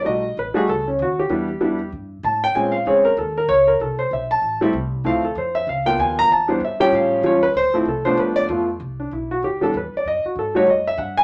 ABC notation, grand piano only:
X:1
M:4/4
L:1/8
Q:"Swing" 1/4=192
K:Ephr
V:1 name="Grand piano"
[d^d]2 B _A =A _D ^F G- | G4 z2 a g | _a f _d _B =A B d B | A c e a3 z2 |
f A c e f g _a _b | a c e g f2 ^c B | c z A c B d z2 | z D E ^F G A B d |
^d ^F A ^c d e ^f ^g |]
V:2 name="Grand piano"
[G,A,^D^F] z2 [G,A,DF] z4 | [G,B,DE] z [G,B,DE] z4 z | [_A,C_DF] z [A,CD_A] z4 z | z4 z [G,A,CE] z2 |
[F,A,CE] z4 [F,_B,_CF]3 | z [E,G,B,D] z [F,G,_DG]3 [F,G,^CF] z | z [F,A,CE] z [F,A,B,D]3 [F,A,B,F] z | z4 z [E,G,B,D] z2 |
z3 [G,A,^D^F] z4 |]